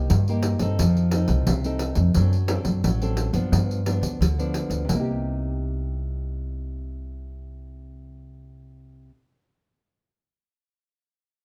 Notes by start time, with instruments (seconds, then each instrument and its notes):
Already playing: nylon-string guitar A#3 D#4 G4
0.10 nylon-string guitar G2, upright bass G2, pandeiro
0.28 nylon-string guitar A#3 D#4 G4, pandeiro
0.43 pandeiro
0.59 upright bass G2, nylon-string guitar C4 D#4 A4, pandeiro
0.79 upright bass F2, nylon-string guitar F3, pandeiro
0.97 pandeiro
1.11 nylon-string guitar C4 D#4 A4, pandeiro
1.28 upright bass C2, pandeiro
1.47 upright bass C2, nylon-string guitar C3, pandeiro
1.64 nylon-string guitar C4 D#4 A4, pandeiro
1.79 pandeiro
1.95 upright bass F2, pandeiro
2.14 upright bass F#2, nylon-string guitar F#3 C4 D4 A4, pandeiro
2.33 pandeiro
2.48 nylon-string guitar C4 D4 A4, pandeiro
2.65 upright bass F#2, pandeiro
2.84 upright bass A1, nylon-string guitar F#3, pandeiro
3.02 nylon-string guitar C4 D4 A4, pandeiro
3.17 pandeiro
3.33 upright bass F#2, nylon-string guitar F3 B3 D4, pandeiro
3.52 upright bass G2, nylon-string guitar G2, pandeiro
3.71 pandeiro
3.86 nylon-string guitar F3 B3 D4, pandeiro
4.01 upright bass D2, pandeiro
4.21 upright bass D2, nylon-string guitar D3, pandeiro
4.39 nylon-string guitar F3 B3 D4, pandeiro
4.54 pandeiro
4.70 upright bass D2, pandeiro
4.85 nylon-string guitar C3
4.89 upright bass C2, nylon-string guitar A#3, pandeiro
4.95 nylon-string guitar D#4
5.00 nylon-string guitar G4